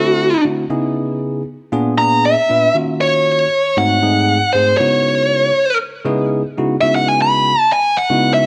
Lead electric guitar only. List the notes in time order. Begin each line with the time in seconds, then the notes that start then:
Already playing: F#4
1.98 A#5
2.25 E5
3.01 C#5
3.78 F#5
4.53 C5
4.77 C#5
6.81 E5
6.95 F#5
7.08 G#5
7.22 B5
7.60 A5
7.73 G#5
7.97 F#5
8.34 E5